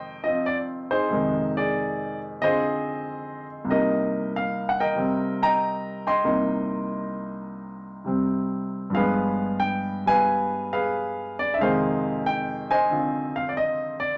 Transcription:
Already playing: F2 C3 D#3 G#3 C5 D#5 G5
0.24 F3 C4 D#5
0.28 F4
0.46 D5
0.91 D#4 G#4 C5
1.09 F2 C3 G#3
1.14 D#3
1.57 G#4 D5
2.41 D3 C4 F4 G#4 C5 D#5
3.65 C2 C3
3.71 A#3 G4 A#4 D#5
3.75 D#4
4.36 F5
4.69 F#5
4.80 A#4 D#5 G5
4.95 C3 G3 C4
5.42 D#5 G5 A#5
6.07 D#5 G5 C6
6.24 C2 C3 A#3 D#4
8.04 C3 G3 C4
8.90 G2 F3
8.95 G#3 G#4 B4 F5
9.00 B3
9.60 G5
10.06 G3 B3 B4 F5 G#5
10.73 G#4 B4 F5
11.39 D5
11.54 E5
11.58 F2 C3 G#3 G#4 F5
11.63 D#3 C5
12.26 G5
12.71 C5 D#5 G#5
12.89 D3 C4 F4
13.36 F5
13.49 D5
13.57 D#5
14.00 D5

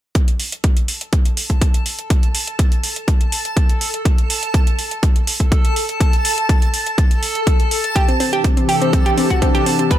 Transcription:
0.15 A4 A5, kick, closed hi-hat
0.28 closed hi-hat
0.40 open hi-hat
0.52 closed hi-hat
0.64 kick, closed hi-hat
0.77 closed hi-hat
0.88 open hi-hat
1.01 closed hi-hat
1.13 kick, closed hi-hat
1.25 closed hi-hat
1.37 open hi-hat
1.50 kick, closed hi-hat
1.61 kick, closed hi-hat
1.74 closed hi-hat
1.86 open hi-hat
1.99 closed hi-hat
2.10 kick, closed hi-hat
2.23 closed hi-hat
2.35 open hi-hat
2.47 closed hi-hat
2.59 kick, closed hi-hat
2.72 closed hi-hat
2.84 open hi-hat
2.96 closed hi-hat
3.08 kick, closed hi-hat
3.21 closed hi-hat
3.32 open hi-hat
3.45 closed hi-hat
3.57 kick, closed hi-hat
3.69 closed hi-hat
3.81 open hi-hat
3.94 closed hi-hat
4.05 kick, closed hi-hat
4.18 closed hi-hat
4.30 open hi-hat
4.43 closed hi-hat
4.54 kick, closed hi-hat
4.67 closed hi-hat
4.79 open hi-hat
4.91 closed hi-hat
5.03 kick, closed hi-hat
5.16 closed hi-hat
5.27 open hi-hat
5.40 kick, closed hi-hat
5.52 kick, closed hi-hat
5.65 closed hi-hat
5.76 open hi-hat
5.89 closed hi-hat
6.00 kick, closed hi-hat
6.13 closed hi-hat
6.25 open hi-hat
6.38 closed hi-hat
6.49 kick, closed hi-hat
6.62 closed hi-hat
6.74 open hi-hat
6.86 closed hi-hat
6.98 kick, closed hi-hat
7.11 closed hi-hat
7.23 open hi-hat
7.35 closed hi-hat
7.47 kick, closed hi-hat
7.60 closed hi-hat
7.71 open hi-hat
7.84 closed hi-hat
7.96 C3 E3 D4 G4, kick, closed hi-hat
8.08 C4, closed hi-hat
8.20 C4, open hi-hat
8.33 G4, closed hi-hat
8.44 C4, kick, closed hi-hat
8.57 C4, closed hi-hat
8.69 G4, open hi-hat
8.82 C4, closed hi-hat
8.93 C4, kick, closed hi-hat
9.06 G4, closed hi-hat
9.18 C4, open hi-hat
9.30 F#4, kick, closed hi-hat
9.42 C4, kick, closed hi-hat
9.55 G4, closed hi-hat
9.66 C4, open hi-hat
9.79 C4, closed hi-hat
9.91 B2 G3 G4 B4, kick, closed hi-hat

